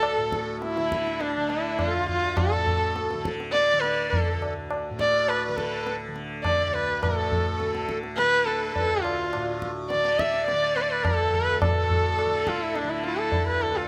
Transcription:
Already playing: D2 A2 D3 A4
0.03 tabla na
0.17 A2
0.32 tabla ke
0.61 E4, tabla te
0.70 F4
0.76 D3 E4, tabla te
0.92 tabla ke
1.07 tabla te
1.20 D4, tabla te
1.35 D3 D4
1.50 E4, tabla te
1.79 F4, tabla na, tabla ge
1.87 A4
1.93 D2 F4
2.08 F4, tabla ge
2.37 A4, tabla na, tabla ge
2.51 A2 A4
2.67 tabla ge
2.96 tabla te
3.10 D3, tabla te
3.25 tabla ke
3.40 tabla te
3.52 D5, tabla te
3.69 D5
3.73 D3
3.80 B4, tabla te
4.10 A4, tabla tin, tabla ge
4.27 A4
4.33 D2
4.42 tabla na
4.71 tabla na
4.90 A2
4.99 D5, tabla ke
5.14 D5
5.28 B4, tabla na
5.42 B4
5.49 D3 B4
5.57 A4, tabla ke
5.87 tabla te
6.08 D3
6.16 tabla te
6.43 D5, tabla na, tabla ge
6.58 D5
6.67 D2 D5
6.73 B4, tabla te
6.88 B4
7.02 A2 A4, tabla na, tabla ge
7.16 A4
7.32 tabla ge
7.60 D3, tabla te
7.75 tabla te
7.89 tabla ke
8.03 tabla te
8.17 D3 B4, tabla te
8.32 B4
8.46 A4, tabla te
8.74 D2 A4, tabla tin, tabla ge
8.90 A4
9.02 F4, tabla na
9.18 F4
9.33 A2, tabla na
9.62 tabla ke
9.90 D5, tabla te
9.94 D3
10.04 D5, tabla te
10.19 E5, tabla ke
10.34 tabla te
10.47 D5, tabla te
10.52 D3
10.62 D5
10.76 B4, tabla te
10.81 D5
10.90 B4
11.05 A4, tabla na, tabla ge
11.09 D2
11.20 A4
11.33 B4, tabla ge
11.62 A4, tabla na, tabla ge
11.68 A2
11.77 A4
11.90 tabla ge
12.19 tabla na
12.26 D3
12.47 F4, tabla ke
12.62 E4
12.75 D4 E4, tabla te
12.84 D3
12.90 D4 E4
13.04 E4 F4, tabla te
13.18 A4
13.32 tabla tin, tabla ge
13.41 D2
13.48 B4
13.61 A4, tabla na
13.70 B4
13.75 F4 A4

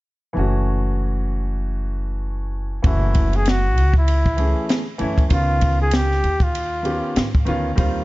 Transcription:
0.33 F#1 E3 A3 C#4
0.39 F#4
2.82 F#1 E3 A3 C#4 E4 F#4, kick, ride
3.14 kick, ride
3.33 G#4, ride
3.45 snare, hi-hat pedal, ride
3.49 F#4
3.77 C#2, ride
3.94 kick
3.98 E4
4.08 ride
4.26 kick
4.37 E3 A3 C#4 G#4, ride
4.69 snare, hi-hat pedal, ride
4.98 F#2 E3 A3 C#4 E4, ride
5.18 kick, ride
5.28 C#2 D#3 B3 C#4 F4, kick, ride
5.34 F4
5.61 kick, ride
5.82 G#4
5.91 G4, snare, hi-hat pedal, ride
6.11 snare
6.24 D#2, ride
6.40 F4, kick, ride
6.55 ride
6.83 D#3 B3 C#4 G4, ride
7.16 G#2, snare, hi-hat pedal, ride
7.35 kick
7.45 D2 D#3 B3 C#4 F4, ride
7.75 D#2 D#3 G3 C4 F4, kick, ride

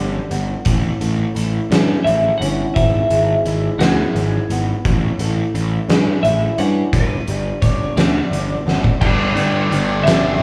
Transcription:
Already playing: G1 G2 D3 G3 B3 D4 G4
0.31 G1 B3, closed hi-hat
0.65 A1 A2, kick, closed hi-hat
1.00 A1 A3, closed hi-hat
1.35 A1 E4, closed hi-hat
1.70 G2 C#4, snare, closed hi-hat
2.04 A1 E3 E5, closed hi-hat
2.38 G1 C#4 F#5, closed hi-hat
2.74 G#1 G#2 E5, kick, closed hi-hat
3.10 G#1 G#3, closed hi-hat
3.45 G#1 E4, closed hi-hat
3.78 D2 G#4, snare, closed hi-hat
3.82 B3
4.15 G#1 E3, closed hi-hat
4.50 G#1 B3, closed hi-hat
4.85 A1 A2, kick, closed hi-hat
5.19 A1 A3, closed hi-hat
5.54 A1 E4, closed hi-hat
5.88 G2 C#4, snare, closed hi-hat
6.23 A1 E3 E5, closed hi-hat
6.58 G2 C#4 F#5, closed hi-hat
6.93 G1 G2 B4, kick, closed hi-hat
7.27 G1 G3, closed hi-hat
7.62 G1 D4 C#5, kick, closed hi-hat
7.96 D2 B3 D5, snare, closed hi-hat
8.31 G1 D3, closed hi-hat
8.66 G1 B3, snare
8.84 kick
9.01 G1 G2 D3 G3 B3 D4 G5, kick, crash
9.35 G1 G2 D3 G3 B3 D4, closed hi-hat
9.70 G1 G2 D3 G3 B3 D4, closed hi-hat
10.04 G1 G2 D3 G3 B3 E5, closed hi-hat
10.08 B3 D4, snare
10.38 G1 G2

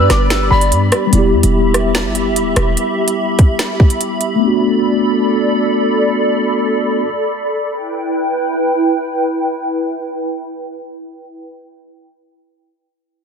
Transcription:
Already playing: G3 B3 D4 G4 B4 D5 B5
0.10 G1 D6, cross-stick, snare, closed hi-hat
0.30 B4 E6, finger snap, snare, closed hi-hat
0.51 G1 D5 B5
0.61 closed hi-hat
0.72 G2, closed hi-hat
0.92 cross-stick, closed hi-hat
1.07 G3 B3
1.13 E1 E4 G4 E5 B5, closed hi-hat
1.19 G4
1.33 E2
1.43 E1, closed hi-hat
1.74 cross-stick, closed hi-hat
1.95 finger snap, snare, closed hi-hat
2.05 G1
2.15 closed hi-hat
2.31 E1
2.36 closed hi-hat
2.56 E1, cross-stick, closed hi-hat
2.77 closed hi-hat
3.08 closed hi-hat
3.39 kick, closed hi-hat
3.59 finger snap, snare, closed hi-hat
3.80 kick
3.90 closed hi-hat
4.01 closed hi-hat
4.21 closed hi-hat
4.36 A3 B3
4.42 D4 A4 D5
4.47 F#4
7.70 E4 B4 G5

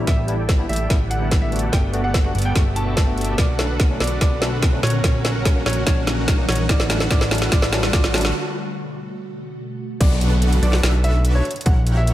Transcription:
Already playing: G3 B3 D4 E4 G4, riser
0.07 A1 D3 A3 E4 G4 A4 D5 E5 G5, kick, snare, closed hi-hat
0.27 G3 B3 D4 E4, closed hi-hat
0.49 kick, snare, closed hi-hat
0.58 G3 B3 D4 E4
0.69 A1 E4 G4 A4 D5 E5 G5, closed hi-hat
0.73 closed hi-hat
0.76 closed hi-hat
0.89 A1 G3 B3 D4 E4 G4 A4 D5 F#5, kick, snare, closed hi-hat
1.10 F#5, closed hi-hat
1.20 G3 B3 D4 E4
1.31 kick, snare, closed hi-hat
1.42 E5
1.51 A3 B3 D4 F#4, closed hi-hat
1.56 closed hi-hat
1.59 closed hi-hat
1.72 G1 B2 B3 G4 A4 D5 F#5 G5, kick, snare, closed hi-hat
1.92 A3 B3 D4 F#4, closed hi-hat
2.04 F#5
2.14 kick, snare, closed hi-hat
2.24 A3 B3 D4 F#4 F#5
2.35 G1 B3 G4 A4 D5 F#5, closed hi-hat
2.38 closed hi-hat
2.42 G5, closed hi-hat
2.54 G1 A3 B3 D4 F#4 G4 A4 D5 E5, kick, snare, closed hi-hat
2.75 A3 B3 D4 F#4 A5, closed hi-hat
2.85 A3 B3 D4 F#4
2.97 kick, snare, closed hi-hat
3.06 A3 B3 D4 F#4
3.18 closed hi-hat
3.21 closed hi-hat
3.24 closed hi-hat
3.38 B1 D3 B3 D4 F#4 A4 B4 D5 F#5, kick, snare, closed hi-hat
3.58 F#3 A3 C#4 D4, snare, closed hi-hat
3.80 kick, snare, closed hi-hat
3.89 F#3 A3 C#4 D4
4.00 B1 D4 F#4 A4 B4 D5 F#5, snare, closed hi-hat
4.04 closed hi-hat
4.07 closed hi-hat
4.21 B1 D4 F#4 A4 B4 D5 F#5, kick, snare, closed hi-hat
4.41 F#3 A3 C#4 D4, snare, closed hi-hat
4.62 kick, snare, closed hi-hat
4.72 F#3 A3 C#4 D4
4.83 A#1 E3 G3 A#3 C#4 F#4 A#4 C#5 F#5, snare, closed hi-hat
4.87 closed hi-hat
4.90 closed hi-hat
5.04 A#1 C#4 F#4 A#4 C#5 F#5, kick, snare, closed hi-hat
5.24 F#3 A#3 C#4, snare, closed hi-hat
5.45 kick, snare, closed hi-hat
5.55 F#3 A#3 C#4
5.66 A#1 C#4 F#4 A#4 C#5 F#5, snare, closed hi-hat
5.70 closed hi-hat
5.73 closed hi-hat
5.86 A#1 C#4 F#4 A#4 C#5 F#5, kick, snare, closed hi-hat
6.06 F#3 A#3 C#4, snare, closed hi-hat
6.28 kick, snare, closed hi-hat
6.38 F#3 A#3 C#4
6.49 A#1 C#4 F#4 A#4 C#5 F#5, snare, closed hi-hat
6.52 closed hi-hat
6.56 closed hi-hat
6.69 A1 D3 G3 A3 D4 F#4 A4 B4 D5 F#5, kick, snare, closed hi-hat
6.80 snare
6.89 F#3 A3 C#4 D4, snare, closed hi-hat
7.00 snare
7.11 A1 D4 F#4 A4 B4 D5 F#5, kick, snare, closed hi-hat
7.21 snare
7.30 F#3 A3 C#4 D4, snare, closed hi-hat
7.35 closed hi-hat
7.38 snare, closed hi-hat
7.52 A1 D4 F#4 A4 B4 D5 F#5, kick, snare, closed hi-hat
7.62 snare
7.72 F#3 A3 C#4 D4, snare, closed hi-hat
7.83 snare
7.93 A1 D4 F#4 A4 B4 D5 F#5, kick, snare, closed hi-hat
8.04 snare
8.13 F#3 A3 C#4 D4, snare, closed hi-hat
8.18 closed hi-hat
8.21 snare, closed hi-hat
8.35 B2 A3 F#4
10.00 B1 D4 F#4 A4 B4 D5 F#5, kick, closed hi-hat, crash, downlifter
10.21 closed hi-hat
10.42 closed hi-hat
10.53 closed hi-hat
10.62 B1 D4 F#4 A4 B4 D5 F#5, closed hi-hat
10.73 snare
10.83 B1 D4 F#4 A4 B4 E5, snare, closed hi-hat
11.04 E5, closed hi-hat
11.25 closed hi-hat
11.35 C#5
11.45 closed hi-hat
11.51 closed hi-hat
11.56 closed hi-hat
11.61 closed hi-hat
11.66 A#1 E4 G4 A#4 C#5 F#5, kick, closed hi-hat
11.87 closed hi-hat
11.97 E5
12.07 closed hi-hat

